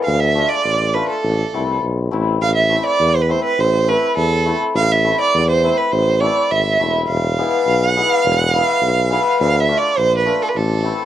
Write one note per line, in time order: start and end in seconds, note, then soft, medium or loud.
0.00 0.12 G#3 medium
0.04 0.42 D2 loud
0.04 0.22 F5 medium
0.20 0.50 E5 medium
0.35 0.50 A3 medium
0.35 0.51 D4 medium
0.35 0.51 F4 medium
0.49 0.95 D5 medium
0.65 1.00 A1 medium
0.94 1.09 A3 medium
0.94 1.10 D4 soft
0.94 1.10 F4 medium
0.94 1.09 B4 medium
1.09 1.79 A4 medium
1.24 1.42 A1 loud
1.54 1.80 C2 medium
1.54 1.68 A3 medium
1.54 1.68 C4 medium
1.54 1.69 E4 medium
1.82 2.09 B1 medium
2.11 2.38 A1 medium
2.11 2.26 A3 medium
2.11 2.27 C4 medium
2.11 2.27 E4 medium
2.41 2.77 A1 medium
2.41 2.54 F5 medium
2.55 2.83 E5 medium
2.69 2.85 A3 medium
2.69 2.85 C4 medium
2.69 2.86 E4 medium
2.86 3.17 D5 loud
3.00 3.35 E2 medium
3.16 3.24 C5 medium
3.22 3.32 B4 medium
3.29 3.44 A3 medium
3.29 3.44 C4 medium
3.29 3.45 E4 medium
3.29 3.43 C5 medium
3.44 3.61 B4 medium
3.59 3.94 A1 loud
3.59 3.90 C5 medium
3.88 4.02 A3 medium
3.88 4.03 C4 medium
3.88 4.03 E4 medium
3.88 4.17 B4 medium
4.17 4.52 E2 medium
4.17 4.58 A4 medium
4.46 4.61 A3 medium
4.46 4.61 C4 soft
4.46 4.62 E4 medium
4.75 5.10 A1 loud
4.75 4.93 F5 medium
4.92 5.20 E5 medium
5.04 5.19 A3 medium
5.04 5.20 C4 medium
5.04 5.20 E4 medium
5.21 5.47 D5 loud
5.34 5.69 E2 loud
5.50 5.79 C5 medium
5.63 5.78 A3 medium
5.63 5.78 C4 medium
5.63 5.79 E4 medium
5.77 5.93 B4 medium
5.92 6.27 A1 loud
5.92 6.22 C5 medium
6.21 6.36 A3 medium
6.21 6.36 C4 soft
6.21 6.37 E4 medium
6.21 6.52 D5 medium
6.51 6.77 G#1 medium
6.51 6.94 E5 medium
6.80 7.06 E1 medium
6.80 6.94 A3 medium
6.80 6.95 C4 medium
6.80 6.95 E4 medium
7.08 7.44 E1 loud
7.08 7.89 F5 loud
7.39 7.95 G#3 medium
7.39 7.53 B3 medium
7.39 7.53 E4 medium
7.67 8.01 B1 medium
7.89 8.11 F#5 loud
7.97 8.52 G#3 medium
7.97 8.11 B3 medium
7.97 8.12 E4 medium
8.11 8.34 F5 loud
8.25 8.60 E1 loud
8.34 8.56 F#5 loud
8.54 9.09 G#3 medium
8.54 8.68 B3 medium
8.54 8.69 E4 medium
8.54 9.36 F5 loud
8.82 9.17 B1 medium
9.11 9.45 G#3 medium
9.11 9.26 B3 medium
9.11 9.26 E4 medium
9.40 9.75 D2 loud
9.40 9.62 F5 medium
9.60 9.79 E5 medium
9.68 9.83 A3 medium
9.68 9.83 D4 medium
9.68 9.84 F4 medium
9.78 10.00 D5 medium
9.98 10.32 A#1 medium
9.98 10.17 C5 loud
10.18 10.44 B4 medium
10.26 10.40 A3 medium
10.26 10.41 D4 medium
10.26 10.41 F4 medium
10.42 10.50 A4 medium
10.49 10.58 B4 medium
10.56 10.90 A1 loud
10.56 11.05 A4 medium
10.83 10.98 A3 medium
10.83 10.98 C4 medium
10.83 10.99 E4 medium